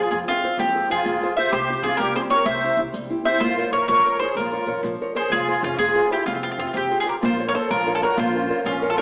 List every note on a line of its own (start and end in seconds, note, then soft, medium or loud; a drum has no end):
0.00 0.22 F4 soft
0.00 0.24 F4 medium
0.00 0.22 G#4 soft
0.00 0.10 G#4 soft
0.00 0.22 C5 soft
0.11 0.22 F2 medium
0.11 0.43 C3 medium
0.11 0.18 G#4 medium
0.11 riq soft
0.28 0.56 C4 medium
0.28 0.56 F4 medium
0.28 0.42 F4 soft
0.28 0.43 G#4 soft
0.28 0.43 C5 medium
0.28 riq soft
0.44 0.69 F4 soft
0.44 0.69 G#4 soft
0.44 0.69 C5 soft
0.44 riq soft
0.58 0.78 F2 medium
0.58 0.89 F3 medium
0.58 0.88 C4 medium
0.58 0.91 G4 medium
0.58 riq medium
0.75 0.88 F4 soft
0.75 0.89 G#4 soft
0.75 0.89 C5 soft
0.90 1.00 F2 medium
0.90 1.15 F4 soft
0.90 1.34 F4 medium
0.90 1.15 G#4 soft
0.90 1.34 G#4 medium
0.90 1.15 C5 medium
1.04 1.15 F2 medium
1.04 1.36 C3 medium
1.04 riq soft
1.22 1.36 F4 soft
1.22 1.37 G#4 soft
1.22 1.37 C5 medium
1.22 riq soft
1.37 1.49 F4 soft
1.37 1.50 G#4 soft
1.37 1.51 C5 medium
1.37 1.50 C5 medium
1.37 1.51 E5 medium
1.37 riq soft
1.50 1.72 C2 medium
1.50 1.83 C3 medium
1.50 1.81 G4 medium
1.50 1.85 C5 medium
1.50 riq medium
1.69 1.84 C4 soft
1.69 1.85 F4 soft
1.69 1.85 G4 soft
1.82 1.93 C2 medium
1.82 2.10 C4 soft
1.82 1.97 F4 medium
1.82 2.10 F4 soft
1.82 1.98 G#4 medium
1.86 2.10 G4 medium
1.97 2.09 C2 medium
1.97 2.31 G3 medium
1.97 2.14 G4 medium
1.97 2.13 A#4 medium
1.97 riq medium
2.13 2.30 C4 soft
2.13 2.30 F4 soft
2.13 2.31 G4 soft
2.13 2.21 G#4 medium
2.13 2.21 C5 medium
2.13 riq soft
2.30 2.43 C4 medium
2.30 2.43 F4 soft
2.30 2.44 G4 soft
2.30 2.45 A#4 medium
2.30 2.45 C#5 medium
2.30 riq soft
2.46 2.67 C2 medium
2.46 2.78 C3 medium
2.46 2.80 C5 medium
2.46 2.79 E5 medium
2.46 riq medium
2.64 2.77 C4 soft
2.64 2.78 E4 soft
2.64 2.78 G4 soft
2.77 2.88 C2 medium
2.77 3.04 C4 soft
2.77 3.04 E4 soft
2.77 3.04 G4 soft
2.93 3.04 C2 medium
2.93 3.25 G3 medium
2.93 riq soft
3.10 3.24 C4 soft
3.10 3.25 E4 soft
3.10 3.25 G4 medium
3.24 3.38 C4 soft
3.24 3.38 E4 soft
3.24 3.38 G4 soft
3.24 3.39 C5 medium
3.24 3.40 E5 medium
3.40 3.61 A#1 medium
3.40 3.72 A#3 medium
3.40 3.71 F4 medium
3.40 3.70 C5 medium
3.40 riq medium
3.58 3.71 A#4 soft
3.58 3.71 C5 soft
3.58 3.72 C#5 soft
3.72 3.83 A#1 medium
3.72 3.98 A#4 soft
3.72 3.88 A#4 medium
3.72 3.98 C5 soft
3.72 3.87 C#5 medium
3.72 3.99 C#5 medium
3.88 3.99 A#1 medium
3.88 4.20 F3 medium
3.88 4.19 A#4 medium
3.88 4.18 C#5 medium
3.88 riq soft
4.06 4.20 A#4 soft
4.06 4.20 C5 soft
4.06 4.20 C#5 soft
4.06 riq soft
4.19 4.36 G#4 medium
4.19 4.47 A#4 soft
4.19 4.36 C5 medium
4.19 4.47 C5 soft
4.19 4.47 C#5 soft
4.19 riq soft
4.35 4.56 A#1 medium
4.35 4.67 A#3 medium
4.35 4.81 F4 soft
4.35 4.80 A#4 medium
4.35 riq soft
4.52 4.66 A#4 soft
4.52 4.67 C5 soft
4.52 4.67 C#5 soft
4.67 4.77 A#1 medium
4.67 4.93 A#4 soft
4.67 4.94 C5 soft
4.67 4.94 C#5 soft
4.83 4.94 A#1 medium
4.83 5.15 F3 medium
4.83 riq soft
5.01 5.14 A#4 soft
5.01 5.14 C5 soft
5.01 5.15 C#5 medium
5.01 riq soft
5.15 5.31 G#4 medium
5.15 5.27 A#4 soft
5.15 5.28 C5 soft
5.15 5.30 C5 medium
5.15 5.28 C#5 medium
5.15 riq soft
5.30 5.51 F1 medium
5.30 5.62 F3 medium
5.30 5.61 G#4 medium
5.30 riq soft
5.34 5.62 F4 medium
5.48 5.62 F4 soft
5.48 5.62 G#4 soft
5.48 5.62 C5 soft
5.63 5.73 F1 loud
5.63 5.78 C#4 medium
5.63 5.89 F4 soft
5.63 5.78 F4 medium
5.63 5.89 G#4 soft
5.63 5.89 C5 soft
5.77 5.89 F1 medium
5.77 6.09 C3 medium
5.77 6.09 F4 medium
5.77 6.08 G#4 medium
5.77 riq soft
5.95 6.09 F4 soft
5.95 6.10 G#4 soft
5.95 6.10 C5 soft
5.95 riq soft
6.10 6.25 E4 medium
6.10 6.36 F4 soft
6.10 6.26 G4 medium
6.10 6.37 G#4 soft
6.10 6.37 C5 medium
6.10 riq soft
6.25 6.47 F1 medium
6.25 6.58 F3 medium
6.25 6.71 C4 medium
6.25 6.33 F4 medium
6.25 riq medium
6.35 6.42 F4 soft
6.43 6.50 F4 medium
6.43 6.57 F4 soft
6.43 6.57 G#4 soft
6.43 6.58 C5 soft
6.52 6.58 F4 medium
6.58 6.68 F1 medium
6.58 6.84 F4 soft
6.58 6.65 F4 medium
6.58 6.85 G#4 soft
6.58 6.85 C5 soft
6.67 6.72 F4 soft
6.73 6.86 F1 medium
6.73 7.06 C3 medium
6.73 6.96 C4 medium
6.73 6.76 F4 medium
6.73 riq soft
6.77 6.99 G4 medium
6.91 7.05 F4 soft
6.91 7.05 G#4 soft
6.91 7.05 C5 medium
6.99 7.06 F4 soft
6.99 7.07 G#4 medium
7.06 7.19 F4 soft
7.06 7.13 G4 medium
7.06 7.19 G#4 soft
7.06 7.14 A#4 medium
7.06 7.19 C5 medium
7.20 7.54 A#1 loud
7.20 7.54 A#3 medium
7.20 7.44 F4 medium
7.20 riq medium
7.25 7.48 C5 medium
7.39 7.53 A#4 soft
7.39 7.54 C5 soft
7.39 7.54 C#5 soft
7.47 7.54 A#4 medium
7.47 7.54 C#5 medium
7.55 7.69 A4 medium
7.55 7.80 A#4 medium
7.55 7.69 C5 medium
7.55 7.81 C5 soft
7.55 7.81 C#5 medium
7.69 8.02 A#1 medium
7.69 8.01 F3 medium
7.69 7.93 F4 medium
7.69 7.93 A#4 medium
7.69 riq soft
7.86 8.01 A#4 soft
7.86 8.01 C5 soft
7.86 8.02 C#5 medium
7.86 riq soft
7.95 8.02 F4 medium
7.95 8.02 A4 medium
8.02 8.17 F#4 medium
8.02 8.28 A#4 soft
8.02 8.17 A#4 medium
8.02 8.28 C5 soft
8.02 8.29 C#5 soft
8.02 riq soft
8.15 8.49 A#1 loud
8.15 8.35 A#3 medium
8.15 8.61 F4 medium
8.15 8.63 C5 medium
8.15 riq medium
8.35 8.60 C#4 soft
8.35 8.49 A#4 soft
8.35 8.49 C5 soft
8.50 8.76 A#4 medium
8.50 8.76 C5 soft
8.50 8.76 C#5 medium
8.64 8.96 A#1 medium
8.64 8.97 F3 medium
8.64 8.88 C#4 medium
8.64 8.89 F4 medium
8.64 riq soft
8.82 8.97 A#4 medium
8.82 8.97 C5 soft
8.82 8.98 C#5 medium
8.82 riq soft
8.90 8.98 F4 medium
8.90 8.98 A4 medium
8.97 9.02 A#4 medium
8.97 9.02 C5 soft
8.97 riq soft